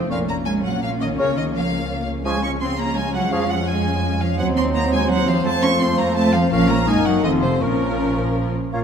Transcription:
Already playing: viola section F3 C4, violin section C4
0.10 double bass section A#1, bassoon A#2, cello section F3, french horn section A#3 C#4, viola section A#3 C#4, violin section F4 C#5 F5, clarinet A#4, flute C#6
0.28 cello section A#3, violin section A#5
0.45 cello section G#3, violin section G#5
0.64 cello section F#3, violin section F#5
0.82 cello section F3, violin section F5
1.00 cello section D#3, violin section D#5
1.18 double bass section C#2, cello section C#3, bassoon C#3, clarinet A#4, violin section C#5, flute C#6
1.36 cello section D#3, violin section D#5
1.54 cello section F3, violin section F5
2.25 bassoon F3, french horn section F3 C#4, cello section G#3, viola section G#3 C#4, violin section F4 C#5 G#5, clarinet G#4, flute C#6
2.43 cello section C#4, violin section C#6
2.61 cello section C4, violin section C6
2.78 cello section A#3, violin section A#5
2.95 cello section G#3, violin section G#5
3.13 cello section F#3, violin section F#5
3.31 double bass section F2, cello section F3, bassoon F3, clarinet G#4, violin section F5, flute C#6
3.50 cello section F#3, violin section F#5
3.67 cello section G#3, violin section G#5
4.21 cello section F3, violin section F5
4.38 double bass section D#2, bassoon F#3, cello section F#3, french horn section F#3 C4, viola section C4 D#4, violin section F#4 C5 F#5, clarinet C5, flute C6
4.56 cello section C4, violin section C6
4.74 cello section A#3, violin section A#5
4.91 cello section G#3, violin section G#5
5.10 cello section F#3, violin section F#5
5.27 cello section F3, violin section F5
5.45 double bass section F2, bassoon F3, french horn section F3, cello section A3, viola section A3 C4, violin section F4 A5
5.63 cello section C#4, violin section C#6
5.80 cello section C4, violin section C6
5.98 cello section A#3, violin section A#5
6.15 cello section A3, violin section A5
6.34 cello section F3, violin section F5
6.51 double bass section A#1, cello section F3, french horn section F3 C#4, bassoon F3, viola section A#3 C#4, violin section F4 A#4 F5, clarinet A#4, flute C#6
6.70 cello section A#3, violin section A#5
6.87 double bass section F#1, bassoon D#3, cello section G#3, french horn section A#3 D#4, viola section A#3 D#4, violin section D#4 A#4 G#5, clarinet A#4, flute D#6
7.06 cello section F#3, violin section F#5, flute C#6
7.24 double bass section F1, cello section D#3, viola section F3 C4, bassoon F3, french horn section A3 C4, violin section F4 A4 D#5, clarinet A4, flute C6
7.42 cello section C3, violin section C5
7.61 double bass section A#1, cello section A#2, bassoon F3, viola section F3 C#4, french horn section A#3 C#4, violin section F4 A#4, clarinet A#4, flute C#6
8.73 double bass section A#1, cello section A#2, bassoon A#3, french horn section A#3 C#4, viola section C#4, clarinet F4, oboe C#5, violin section F5 A#5, flute F5

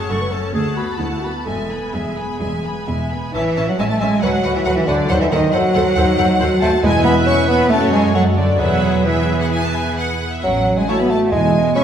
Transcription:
Already playing: viola section C#4, violin section C#5 A5
0.00 clarinet G#4
0.10 double bass section F#1, cello section F#2, viola section A3, clarinet A4, violin section F#5 C#6
0.21 clarinet B4
0.32 viola section C#4, clarinet A4, violin section C#5 A5
0.54 double bass section D2, cello section D2, viola section A3, clarinet G#4, violin section F#5 A5
0.76 viola section B3, clarinet F#4, violin section A5 B5
0.98 cello section D2, double bass section D2, viola section A3, clarinet E4, violin section F#5 A5
1.22 viola section B3, clarinet F#4, violin section A5 B5
1.45 double bass section E1, cello section E2, viola section G#3, clarinet A4, violin section E5 G#5
1.70 viola section B3, violin section G#5 B5
1.93 double bass section E1, cello section E2, viola section G#3, clarinet G#4, violin section E5 G#5
2.16 viola section B3, violin section G#5 B5
2.40 double bass section E1, cello section E2, viola section G#3, violin section E5 G#5
2.64 viola section B3, violin section G#5 B5
2.86 double bass section E1, cello section E2, viola section G#3, violin section E5 G#5
3.10 viola section B3, violin section G#5 B5
3.34 double bass section A1, bassoon E3, cello section E3, viola section C#4 E5, violin section E5 A5
3.56 double bass section A1, viola section C#4 E5, violin section A5
3.68 cello section F#3, bassoon F#3, violin section F#5
3.79 double bass section A1, cello section G#3, bassoon G#3, viola section C#4 E5, violin section G#5 A5
3.89 cello section A3, bassoon A3, violin section A5
4.00 double bass section A1, cello section G#3, bassoon G#3, viola section C#4 E5, violin section G#5 A5
4.22 double bass section D2, cello section F#3, bassoon F#3, viola section F#4 B4, french horn section F#4, violin section F#5
4.44 double bass section D2, viola section F#4 B4, violin section F#5
4.54 cello section E3, bassoon E3, violin section E5
4.65 double bass section D2, cello section F#3, bassoon F#3, viola section F#4 B4, violin section F#5
4.75 cello section E3, bassoon E3, violin section E5
4.87 double bass section D2, bassoon D3, cello section D3, viola section F#4 B4, violin section D5 F#5
5.09 double bass section D#2, bassoon F#3, cello section F#3, french horn section D#4, viola section A4 C5, violin section F#5
5.20 cello section E3, bassoon E3, violin section E5
5.30 double bass section D#2, cello section D#3, bassoon D#3, viola section A4 C5, violin section D#5 F#5
5.52 double bass section D#2, cello section F#3, bassoon F#3, french horn section F#4, viola section A4 C5, violin section F#5
5.74 double bass section D#2, viola section A4 C5, violin section F#5
5.95 double bass section D#2, french horn section D#4, viola section A4 C5, violin section F#5
6.18 double bass section D#2, viola section A4 C5, violin section F#5
6.40 double bass section D#2, french horn section F#4, viola section A4 C5, violin section F#5
6.61 double bass section D#2, cello section A3, bassoon A3, viola section A4 C5, violin section F#5 A5
6.83 double bass section E2, timpani E2, cello section G#3, bassoon G#3, french horn section E4, viola section B4, violin section E5 G#5
7.04 cello section B3, bassoon B3, violin section B5
7.26 bassoon C#4, cello section C#4, violin section C#6
7.48 cello section B3, bassoon B3, violin section B5
7.70 double bass section F#2, bassoon A3, cello section A3, french horn section C#4, viola section F#4 A4, violin section C#5 A5
7.92 bassoon G#3, cello section G#3, violin section G#5
8.14 bassoon F#3, cello section F#3, french horn section A3, viola section F#4 A4, violin section C#5 F#5
8.36 cello section D3, bassoon D3, violin section D5
8.59 double bass section E2, timpani E2, bassoon F#3, cello section F#3, french horn section B3, viola section G#4 B4, violin section E5 F#5
9.05 bassoon E3, cello section E3, viola section G#4 B4, violin section E5
9.40 violin section F#5
9.51 violin section G#5
9.63 violin section A5
9.73 violin section G#5
9.97 violin section F#5
10.32 violin section E5
10.43 double bass section A1, cello section F#3, bassoon F#3, french horn section C#4, violin section F#5
10.78 cello section G#3, bassoon G#3, violin section G#5
10.88 bassoon A3, cello section A3, viola section E4 C#5, french horn section F#4, violin section E5 A5
10.99 cello section B3, bassoon B3, violin section B5
11.10 bassoon A3, cello section A3, violin section A5
11.32 timpani E2, double bass section E2, bassoon G#3, cello section G#3, french horn section E4, violin section G#5
11.75 bassoon C#4, cello section C#4, viola section E4 B4, french horn section F#4, violin section E5 C#6

